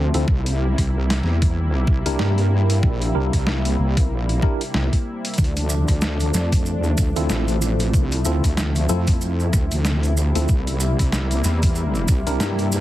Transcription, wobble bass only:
0, 0, Header, 1, 2, 480
1, 0, Start_track
1, 0, Tempo, 638298
1, 208, Time_signature, 4, 2, 24, 8
1, 9629, End_track
2, 0, Start_track
2, 0, Title_t, "Wobble bass"
2, 0, Program_c, 0, 39
2, 0, Note_on_c, 0, 38, 98
2, 84, Note_off_c, 0, 38, 0
2, 108, Note_on_c, 0, 38, 96
2, 192, Note_off_c, 0, 38, 0
2, 208, Note_on_c, 0, 36, 94
2, 565, Note_off_c, 0, 36, 0
2, 587, Note_on_c, 0, 36, 93
2, 912, Note_off_c, 0, 36, 0
2, 928, Note_on_c, 0, 40, 96
2, 1392, Note_off_c, 0, 40, 0
2, 1408, Note_on_c, 0, 36, 101
2, 1525, Note_off_c, 0, 36, 0
2, 1548, Note_on_c, 0, 36, 95
2, 1632, Note_off_c, 0, 36, 0
2, 1650, Note_on_c, 0, 43, 98
2, 2113, Note_off_c, 0, 43, 0
2, 2128, Note_on_c, 0, 34, 97
2, 2352, Note_off_c, 0, 34, 0
2, 2369, Note_on_c, 0, 36, 94
2, 2485, Note_off_c, 0, 36, 0
2, 2506, Note_on_c, 0, 36, 100
2, 2832, Note_off_c, 0, 36, 0
2, 2848, Note_on_c, 0, 36, 97
2, 3072, Note_off_c, 0, 36, 0
2, 3088, Note_on_c, 0, 34, 97
2, 3312, Note_off_c, 0, 34, 0
2, 3568, Note_on_c, 0, 36, 99
2, 3685, Note_off_c, 0, 36, 0
2, 4047, Note_on_c, 0, 38, 94
2, 4404, Note_off_c, 0, 38, 0
2, 4426, Note_on_c, 0, 38, 98
2, 4751, Note_off_c, 0, 38, 0
2, 4767, Note_on_c, 0, 41, 95
2, 5098, Note_off_c, 0, 41, 0
2, 5098, Note_on_c, 0, 40, 95
2, 5231, Note_off_c, 0, 40, 0
2, 5247, Note_on_c, 0, 38, 100
2, 5364, Note_off_c, 0, 38, 0
2, 5387, Note_on_c, 0, 38, 99
2, 5472, Note_off_c, 0, 38, 0
2, 5487, Note_on_c, 0, 33, 99
2, 5951, Note_off_c, 0, 33, 0
2, 5968, Note_on_c, 0, 36, 97
2, 6192, Note_off_c, 0, 36, 0
2, 6207, Note_on_c, 0, 38, 98
2, 6324, Note_off_c, 0, 38, 0
2, 6347, Note_on_c, 0, 38, 96
2, 6672, Note_off_c, 0, 38, 0
2, 6688, Note_on_c, 0, 41, 99
2, 7152, Note_off_c, 0, 41, 0
2, 7168, Note_on_c, 0, 38, 97
2, 7285, Note_off_c, 0, 38, 0
2, 7307, Note_on_c, 0, 38, 97
2, 7765, Note_off_c, 0, 38, 0
2, 7786, Note_on_c, 0, 38, 94
2, 7871, Note_off_c, 0, 38, 0
2, 7887, Note_on_c, 0, 36, 97
2, 8244, Note_off_c, 0, 36, 0
2, 8266, Note_on_c, 0, 36, 96
2, 8591, Note_off_c, 0, 36, 0
2, 8606, Note_on_c, 0, 40, 96
2, 9071, Note_off_c, 0, 40, 0
2, 9087, Note_on_c, 0, 36, 100
2, 9204, Note_off_c, 0, 36, 0
2, 9225, Note_on_c, 0, 36, 102
2, 9311, Note_off_c, 0, 36, 0
2, 9326, Note_on_c, 0, 43, 101
2, 9629, Note_off_c, 0, 43, 0
2, 9629, End_track
0, 0, End_of_file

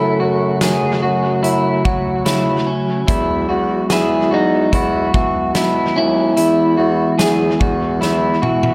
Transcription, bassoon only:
0, 0, Header, 1, 2, 480
1, 0, Start_track
1, 0, Key_signature, 4, "major"
1, 0, Tempo, 821918
1, 1801, Time_signature, 4, 2, 24, 8
1, 5106, End_track
2, 0, Start_track
2, 0, Title_t, "Bassoon"
2, 0, Program_c, 0, 70
2, 0, Note_on_c, 0, 42, 84
2, 93, Note_off_c, 0, 42, 0
2, 122, Note_on_c, 0, 42, 94
2, 333, Note_off_c, 0, 42, 0
2, 358, Note_on_c, 0, 42, 84
2, 571, Note_off_c, 0, 42, 0
2, 600, Note_on_c, 0, 42, 94
2, 812, Note_off_c, 0, 42, 0
2, 836, Note_on_c, 0, 42, 96
2, 1050, Note_off_c, 0, 42, 0
2, 1081, Note_on_c, 0, 54, 89
2, 1292, Note_off_c, 0, 54, 0
2, 1316, Note_on_c, 0, 49, 80
2, 1530, Note_off_c, 0, 49, 0
2, 1802, Note_on_c, 0, 40, 85
2, 2013, Note_off_c, 0, 40, 0
2, 2037, Note_on_c, 0, 40, 84
2, 2250, Note_off_c, 0, 40, 0
2, 2280, Note_on_c, 0, 40, 79
2, 2492, Note_off_c, 0, 40, 0
2, 2518, Note_on_c, 0, 40, 87
2, 2730, Note_off_c, 0, 40, 0
2, 2760, Note_on_c, 0, 40, 97
2, 2972, Note_off_c, 0, 40, 0
2, 3002, Note_on_c, 0, 52, 95
2, 3213, Note_off_c, 0, 52, 0
2, 3240, Note_on_c, 0, 47, 71
2, 3451, Note_off_c, 0, 47, 0
2, 3481, Note_on_c, 0, 39, 85
2, 3692, Note_off_c, 0, 39, 0
2, 3720, Note_on_c, 0, 40, 79
2, 3932, Note_off_c, 0, 40, 0
2, 3961, Note_on_c, 0, 40, 97
2, 4172, Note_off_c, 0, 40, 0
2, 4201, Note_on_c, 0, 40, 81
2, 4412, Note_off_c, 0, 40, 0
2, 4443, Note_on_c, 0, 40, 87
2, 4653, Note_off_c, 0, 40, 0
2, 4680, Note_on_c, 0, 40, 95
2, 4892, Note_off_c, 0, 40, 0
2, 4922, Note_on_c, 0, 52, 87
2, 5106, Note_off_c, 0, 52, 0
2, 5106, End_track
0, 0, End_of_file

